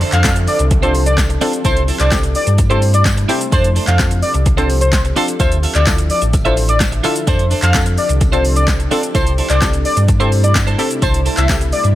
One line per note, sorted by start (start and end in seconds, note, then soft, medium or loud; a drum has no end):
0.00 1.63 F3 medium
0.00 1.63 C4 medium
0.00 5.36 D4 medium
0.00 0.13 D4 medium
0.00 1.63 G4 medium
0.00 1.61 A4 medium
0.00 0.12 A4 medium
0.00 0.11 C5 medium
0.00 open hi-hat medium
0.00 downlifter medium
0.00 shaker medium
0.12 0.48 F2 loud
0.12 0.23 D4 medium
0.12 0.24 A4 medium
0.12 0.24 C5 medium
0.12 0.32 F5 medium
0.12 clap medium
0.12 closed hi-hat medium
0.12 shaker medium
0.24 0.56 C4 medium
0.24 0.56 D4 medium
0.24 0.56 F4 medium
0.24 0.56 A4 medium
0.24 muted clean electric guitar stroke soft
0.24 kick loud
0.24 snare loud
0.24 clap loud
0.24 closed hi-hat medium
0.24 tambourine medium
0.24 shaker medium
0.36 muted clean electric guitar stroke soft
0.36 closed hi-hat medium
0.36 shaker medium
0.47 0.57 D5 medium
0.47 open hi-hat medium
0.47 tambourine medium
0.47 shaker medium
0.59 1.39 C2 loud
0.59 muted clean electric guitar stroke soft
0.59 closed hi-hat medium
0.59 shaker medium
0.71 muted clean electric guitar stroke soft
0.71 kick loud
0.71 closed hi-hat medium
0.71 shaker medium
0.83 1.14 C4 medium
0.83 1.14 D4 medium
0.83 0.93 D4 medium
0.83 1.14 F4 medium
0.83 1.15 A4 loud
0.83 0.94 A4 medium
0.83 0.94 C5 medium
0.83 0.93 C5 medium
0.83 closed hi-hat soft
0.83 shaker soft
0.94 muted clean electric guitar stroke soft
0.94 open hi-hat medium
0.94 tambourine soft
0.94 shaker medium
1.06 1.16 D5 medium
1.06 muted clean electric guitar stroke medium
1.06 closed hi-hat medium
1.06 shaker medium
1.18 muted clean electric guitar stroke soft
1.18 kick loud
1.18 snare medium
1.18 clap loud
1.18 closed hi-hat medium
1.18 tambourine medium
1.18 shaker medium
1.30 muted clean electric guitar stroke medium
1.30 closed hi-hat soft
1.30 shaker soft
1.41 1.65 C4 medium
1.41 1.58 D4 medium
1.41 1.65 D4 medium
1.41 1.65 F4 medium
1.41 1.65 A4 loud
1.41 1.53 A4 medium
1.41 1.52 C5 medium
1.41 open hi-hat medium
1.41 tambourine soft
1.41 shaker medium
1.53 muted clean electric guitar stroke medium
1.53 closed hi-hat medium
1.53 shaker medium
1.65 1.91 C2 loud
1.65 3.50 C3 medium
1.65 3.50 G3 medium
1.65 3.50 A3 medium
1.65 1.82 E4 medium
1.65 3.50 E4 medium
1.65 1.82 A4 loud
1.65 1.75 C5 loud
1.65 1.82 C5 medium
1.65 kick loud
1.65 closed hi-hat medium
1.65 tambourine medium
1.65 shaker medium
1.77 closed hi-hat medium
1.77 shaker medium
1.88 2.00 E4 medium
1.88 1.99 A4 medium
1.88 1.99 C5 medium
1.88 open hi-hat medium
1.88 shaker medium
2.00 2.35 C2 loud
2.00 2.10 E4 medium
2.00 2.11 A4 medium
2.00 2.11 C5 medium
2.00 2.19 D5 medium
2.00 clap medium
2.00 closed hi-hat medium
2.00 shaker medium
2.11 2.43 C4 medium
2.11 2.43 E4 medium
2.11 2.43 G4 medium
2.11 2.43 A4 medium
2.11 kick loud
2.11 snare loud
2.11 clap loud
2.11 closed hi-hat medium
2.11 tambourine medium
2.11 shaker medium
2.23 muted clean electric guitar stroke soft
2.23 closed hi-hat medium
2.23 shaker medium
2.35 2.45 D5 medium
2.35 open hi-hat medium
2.35 tambourine soft
2.35 shaker medium
2.47 3.26 G2 medium
2.47 muted clean electric guitar stroke soft
2.47 closed hi-hat medium
2.47 shaker medium
2.58 muted clean electric guitar stroke soft
2.58 kick loud
2.58 closed hi-hat medium
2.58 tambourine soft
2.58 shaker medium
2.70 3.02 C4 medium
2.70 3.02 E4 medium
2.70 2.81 E4 medium
2.70 3.02 G4 medium
2.70 3.02 A4 loud
2.70 2.81 A4 medium
2.70 2.82 C5 medium
2.70 2.80 C5 medium
2.70 closed hi-hat soft
2.70 shaker soft
2.82 muted clean electric guitar stroke soft
2.82 open hi-hat medium
2.82 tambourine soft
2.82 shaker medium
2.94 3.04 D5 medium
2.94 muted clean electric guitar stroke medium
2.94 closed hi-hat medium
2.94 shaker medium
3.05 muted clean electric guitar stroke medium
3.05 kick loud
3.05 snare loud
3.05 clap loud
3.05 closed hi-hat medium
3.05 tambourine medium
3.05 shaker medium
3.17 muted clean electric guitar stroke medium
3.17 closed hi-hat soft
3.17 shaker soft
3.29 3.52 C4 medium
3.29 3.46 E4 medium
3.29 3.53 E4 medium
3.29 3.53 G4 medium
3.29 3.40 A4 medium
3.29 3.53 C5 medium
3.29 3.39 C5 loud
3.29 open hi-hat medium
3.29 tambourine soft
3.29 shaker medium
3.41 muted clean electric guitar stroke soft
3.41 closed hi-hat medium
3.41 shaker medium
3.52 3.79 F2 loud
3.52 5.38 F3 medium
3.52 5.38 C4 medium
3.52 3.69 D4 medium
3.52 5.38 G4 medium
3.52 7.24 A4 medium
3.52 3.70 A4 medium
3.52 3.62 C5 loud
3.52 3.70 C5 loud
3.52 kick loud
3.52 closed hi-hat medium
3.52 tambourine medium
3.52 shaker medium
3.64 closed hi-hat medium
3.64 shaker medium
3.75 3.88 D4 medium
3.75 3.87 A4 medium
3.75 3.86 C5 medium
3.75 open hi-hat medium
3.75 tambourine soft
3.75 shaker medium
3.87 4.23 F2 loud
3.87 3.98 D4 medium
3.87 3.99 A4 medium
3.87 3.99 C5 medium
3.87 4.07 F5 medium
3.87 clap medium
3.87 closed hi-hat medium
3.87 shaker medium
3.99 4.31 C4 medium
3.99 4.31 D4 medium
3.99 4.31 F4 medium
3.99 4.31 A4 medium
3.99 kick loud
3.99 snare loud
3.99 clap loud
3.99 closed hi-hat medium
3.99 tambourine loud
3.99 shaker medium
4.11 muted clean electric guitar stroke soft
4.11 closed hi-hat medium
4.11 shaker medium
4.22 4.32 D5 medium
4.22 open hi-hat medium
4.22 tambourine soft
4.22 shaker medium
4.34 5.14 C2 medium
4.34 muted clean electric guitar stroke soft
4.34 closed hi-hat medium
4.34 shaker medium
4.46 muted clean electric guitar stroke soft
4.46 kick loud
4.46 closed hi-hat medium
4.46 shaker medium
4.57 4.89 C4 medium
4.57 4.89 D4 medium
4.57 4.68 D4 medium
4.57 4.89 F4 medium
4.57 4.89 A4 loud
4.57 4.69 A4 medium
4.57 4.69 C5 medium
4.57 4.67 C5 medium
4.57 closed hi-hat soft
4.57 shaker soft
4.69 muted clean electric guitar stroke soft
4.69 open hi-hat medium
4.69 tambourine medium
4.69 shaker medium
4.81 5.00 C5 medium
4.81 muted clean electric guitar stroke medium
4.81 closed hi-hat medium
4.81 shaker medium
4.93 muted clean electric guitar stroke medium
4.93 kick loud
4.93 snare medium
4.93 clap loud
4.93 closed hi-hat medium
4.93 tambourine medium
4.93 shaker medium
5.05 muted clean electric guitar stroke medium
5.05 closed hi-hat soft
5.05 shaker soft
5.16 5.40 C4 medium
5.16 5.33 D4 medium
5.16 5.40 D4 medium
5.16 5.40 F4 medium
5.16 5.40 A4 loud
5.16 5.28 A4 loud
5.16 5.27 C5 loud
5.16 open hi-hat medium
5.16 tambourine soft
5.16 shaker medium
5.28 muted clean electric guitar stroke soft
5.28 closed hi-hat medium
5.28 shaker medium
5.40 5.66 D2 loud
5.40 7.26 D3 medium
5.40 7.26 F3 medium
5.40 11.95 D4 medium
5.40 5.57 F4 medium
5.40 5.57 A4 loud
5.40 5.49 C5 loud
5.40 7.26 E5 medium
5.40 5.57 E5 loud
5.40 kick loud
5.40 closed hi-hat medium
5.40 tambourine medium
5.40 shaker medium
5.52 closed hi-hat medium
5.52 shaker medium
5.63 5.75 F4 medium
5.63 5.74 A4 medium
5.63 5.74 E5 medium
5.63 open hi-hat medium
5.63 tambourine soft
5.63 shaker soft
5.75 6.10 D2 loud
5.75 5.85 F4 medium
5.75 5.86 A4 medium
5.75 5.94 D5 medium
5.75 5.87 E5 medium
5.75 clap medium
5.75 closed hi-hat medium
5.75 shaker medium
5.87 6.18 D4 medium
5.87 6.18 E4 medium
5.87 6.19 F4 medium
5.87 6.19 A4 medium
5.87 kick loud
5.87 snare loud
5.87 clap loud
5.87 closed hi-hat medium
5.87 tambourine loud
5.87 shaker medium
5.98 muted clean electric guitar stroke soft
5.98 closed hi-hat medium
5.98 shaker medium
6.10 6.20 D5 medium
6.10 open hi-hat medium
6.10 tambourine soft
6.10 shaker medium
6.22 7.01 A1 medium
6.22 muted clean electric guitar stroke soft
6.22 closed hi-hat medium
6.22 shaker medium
6.33 muted clean electric guitar stroke soft
6.33 kick loud
6.33 closed hi-hat medium
6.33 tambourine soft
6.33 shaker medium
6.45 6.77 D4 medium
6.45 6.77 E4 medium
6.45 6.77 F4 medium
6.45 6.56 F4 medium
6.45 6.56 A4 medium
6.45 6.77 A4 medium
6.45 6.55 C5 medium
6.45 6.57 E5 medium
6.45 closed hi-hat soft
6.45 shaker soft
6.57 muted clean electric guitar stroke soft
6.57 open hi-hat medium
6.57 tambourine medium
6.57 shaker medium
6.69 6.79 D5 medium
6.69 muted clean electric guitar stroke medium
6.69 closed hi-hat medium
6.69 shaker medium
6.80 muted clean electric guitar stroke soft
6.80 kick loud
6.80 snare medium
6.80 clap loud
6.80 closed hi-hat medium
6.80 tambourine medium
6.80 shaker medium
6.92 muted clean electric guitar stroke soft
6.92 closed hi-hat soft
6.92 shaker soft
7.04 7.27 D4 medium
7.04 7.27 E4 medium
7.04 7.21 F4 loud
7.04 7.28 F4 medium
7.04 7.15 A4 loud
7.04 7.28 A4 loud
7.04 7.14 E5 loud
7.04 open hi-hat medium
7.04 tambourine medium
7.04 shaker medium
7.15 muted clean electric guitar stroke soft
7.15 closed hi-hat medium
7.15 shaker medium
7.27 7.54 F2 loud
7.27 9.13 F3 medium
7.27 9.13 C4 medium
7.27 7.44 D4 medium
7.27 9.13 G4 medium
7.27 9.13 A4 medium
7.27 7.45 A4 medium
7.27 7.37 C5 loud
7.27 7.45 C5 loud
7.27 kick loud
7.27 closed hi-hat medium
7.27 tambourine medium
7.27 shaker medium
7.39 closed hi-hat medium
7.39 shaker medium
7.51 7.63 D4 medium
7.51 7.62 A4 medium
7.51 7.61 C5 medium
7.51 open hi-hat medium
7.51 tambourine soft
7.51 shaker medium
7.62 7.98 F2 loud
7.62 7.73 D4 medium
7.62 7.74 A4 medium
7.62 7.74 C5 medium
7.62 7.82 F5 medium
7.62 clap medium
7.62 closed hi-hat medium
7.62 shaker medium
7.74 8.06 C4 medium
7.74 8.06 D4 medium
7.74 8.06 F4 medium
7.74 8.06 A4 medium
7.74 kick loud
7.74 snare loud
7.74 clap loud
7.74 closed hi-hat medium
7.74 tambourine medium
7.74 shaker medium
7.86 muted clean electric guitar stroke medium
7.86 closed hi-hat medium
7.86 shaker medium
7.98 8.08 D5 medium
7.98 open hi-hat medium
7.98 tambourine medium
7.98 shaker medium
8.09 8.88 C2 medium
8.09 muted clean electric guitar stroke soft
8.09 closed hi-hat medium
8.09 shaker medium
8.21 muted clean electric guitar stroke medium
8.21 kick loud
8.21 closed hi-hat medium
8.21 tambourine soft
8.21 shaker medium
8.32 8.64 C4 medium
8.32 8.64 D4 medium
8.32 8.43 D4 medium
8.32 8.64 F4 medium
8.32 8.65 A4 loud
8.32 8.44 A4 medium
8.32 8.44 C5 medium
8.32 8.43 C5 medium
8.32 closed hi-hat soft
8.32 shaker soft
8.44 muted clean electric guitar stroke soft
8.44 open hi-hat medium
8.44 tambourine medium
8.44 shaker medium
8.56 8.66 D5 medium
8.56 muted clean electric guitar stroke soft
8.56 closed hi-hat medium
8.56 shaker medium
8.68 muted clean electric guitar stroke medium
8.68 kick loud
8.68 snare medium
8.68 clap loud
8.68 closed hi-hat medium
8.68 tambourine medium
8.68 shaker medium
8.79 muted clean electric guitar stroke soft
8.79 closed hi-hat soft
8.79 shaker soft
8.91 9.15 C4 medium
8.91 9.08 D4 medium
8.91 9.15 D4 medium
8.91 9.15 F4 medium
8.91 9.15 A4 loud
8.91 9.03 A4 medium
8.91 9.02 C5 medium
8.91 open hi-hat medium
8.91 tambourine soft
8.91 shaker medium
9.03 muted clean electric guitar stroke medium
9.03 closed hi-hat medium
9.03 shaker medium
9.15 9.41 C2 loud
9.15 11.95 C3 medium
9.15 11.95 G3 medium
9.15 11.95 A3 medium
9.15 9.32 E4 medium
9.15 11.95 E4 medium
9.15 9.32 A4 loud
9.15 9.24 C5 loud
9.15 9.32 C5 loud
9.15 kick loud
9.15 closed hi-hat medium
9.15 tambourine medium
9.15 shaker medium
9.27 closed hi-hat medium
9.27 shaker medium
9.38 9.50 E4 medium
9.38 9.49 A4 medium
9.38 9.48 C5 medium
9.38 open hi-hat medium
9.38 tambourine soft
9.38 shaker medium
9.50 9.85 C2 loud
9.50 9.60 E4 medium
9.50 9.61 A4 medium
9.50 9.61 C5 medium
9.50 9.69 D5 medium
9.50 clap medium
9.50 closed hi-hat medium
9.50 shaker medium
9.61 9.93 C4 medium
9.61 9.93 E4 medium
9.61 9.93 G4 medium
9.61 9.93 A4 medium
9.61 muted clean electric guitar stroke soft
9.61 kick loud
9.61 snare loud
9.61 clap loud
9.61 closed hi-hat medium
9.61 tambourine medium
9.61 shaker medium
9.73 muted clean electric guitar stroke soft
9.73 closed hi-hat medium
9.73 shaker medium
9.85 9.95 D5 medium
9.85 open hi-hat medium
9.85 tambourine soft
9.85 shaker medium
9.97 10.76 G2 medium
9.97 muted clean electric guitar stroke soft
9.97 closed hi-hat medium
9.97 shaker medium
10.08 muted clean electric guitar stroke soft
10.08 kick loud
10.08 closed hi-hat medium
10.08 tambourine soft
10.08 shaker medium
10.20 10.52 C4 medium
10.20 10.52 E4 medium
10.20 10.31 E4 medium
10.20 10.52 G4 medium
10.20 10.52 A4 loud
10.20 10.31 A4 medium
10.20 10.32 C5 medium
10.20 10.30 C5 medium
10.20 closed hi-hat soft
10.20 shaker soft
10.32 muted clean electric guitar stroke soft
10.32 open hi-hat medium
10.32 tambourine soft
10.32 shaker medium
10.44 10.53 D5 medium
10.44 muted clean electric guitar stroke soft
10.44 closed hi-hat medium
10.44 shaker medium
10.55 muted clean electric guitar stroke soft
10.55 kick loud
10.55 snare medium
10.55 clap loud
10.55 closed hi-hat medium
10.55 tambourine medium
10.55 shaker medium
10.67 10.77 E4 medium
10.67 10.78 A4 medium
10.67 10.79 C5 medium
10.67 closed hi-hat soft
10.67 shaker soft
10.78 11.17 C4 medium
10.78 10.96 E4 medium
10.78 11.17 E4 medium
10.78 11.17 G4 medium
10.78 11.17 A4 loud
10.78 10.90 A4 medium
10.78 10.89 C5 medium
10.78 open hi-hat medium
10.78 tambourine medium
10.78 shaker medium
10.90 muted clean electric guitar stroke medium
10.90 closed hi-hat medium
10.90 shaker medium
11.02 11.29 C2 loud
11.02 11.19 E4 medium
11.02 11.20 A4 medium
11.02 11.12 C5 loud
11.02 11.20 C5 loud
11.02 kick loud
11.02 closed hi-hat medium
11.02 tambourine medium
11.02 shaker medium
11.14 closed hi-hat medium
11.14 shaker medium
11.25 11.37 E4 medium
11.25 11.37 A4 medium
11.25 11.36 C5 medium
11.25 open hi-hat medium
11.25 tambourine soft
11.25 shaker medium
11.37 11.73 C2 loud
11.37 11.48 E4 medium
11.37 11.48 A4 medium
11.37 11.49 C5 medium
11.37 11.57 E5 medium
11.37 clap medium
11.37 closed hi-hat medium
11.37 shaker medium
11.49 11.81 C4 medium
11.49 11.81 E4 medium
11.49 11.81 G4 medium
11.49 11.81 A4 medium
11.49 kick loud
11.49 snare loud
11.49 clap loud
11.49 closed hi-hat medium
11.49 tambourine medium
11.49 shaker medium
11.61 muted clean electric guitar stroke medium
11.61 closed hi-hat medium
11.61 shaker medium
11.73 11.82 D5 medium
11.73 open hi-hat medium
11.73 tambourine soft
11.73 shaker medium
11.84 11.95 G2 medium
11.84 muted clean electric guitar stroke soft
11.84 closed hi-hat medium
11.84 shaker medium